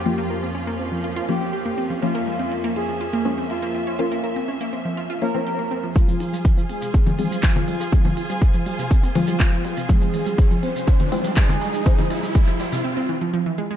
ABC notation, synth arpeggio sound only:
X:1
M:4/4
L:1/16
Q:1/4=122
K:Fm
V:1 name="Synth arpeggio sound"
F B, B C D B, C F, F F B, C G B, C F, | B, B, A, C B, B, F F, F B, A, C B, B, C d | F B, B C D B, C F, F F B, C G B, C F, | z F, =E, G, F, F, C C, C F, E, G, F, F, G, A |
C F, F G, A, F, G, C, C C F, G, C F, G, C, | F, F, =E, G, F, F, C C, C F, E, G, F, F, G, A | C F, F G, A, F, G, C, C C =E, F, F, E, A, A, |]